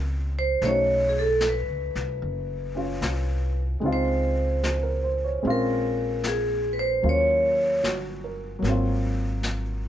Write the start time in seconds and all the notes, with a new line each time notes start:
Already playing: C#2 G#3 A#3 C4 C#4 F4
0.39 C5
0.62 B1 A3 C#4 C#5, brush sweep, snare
0.66 D#4 F#4
1.09 G#4
1.19 A4
1.40 snare, hi-hat pedal
1.49 B4
1.68 C#2
1.95 C2, snare
2.21 F#1, brush sweep
2.75 C#4 F4
3.01 C2, snare, hi-hat pedal
3.80 C#2 G#3 C4 D#4, brush sweep
3.86 F4
3.93 C5
4.63 G#4, snare, hi-hat pedal
4.83 A#4
5.04 C5
5.24 C#5
5.43 A#1 G#3 C4 C#4, brush sweep
5.47 F4 A#4
6.23 snare, hi-hat pedal
6.28 G#4
6.73 B4
6.79 C5
7.02 D#2 F#3 A#3 C#4 F4, brush sweep
7.09 C#5
7.83 G1 F#4, snare, hi-hat pedal
8.24 A#4
8.59 G#1 F#3 A#3
8.64 C4, brush sweep, snare
8.69 F4
9.43 snare, hi-hat pedal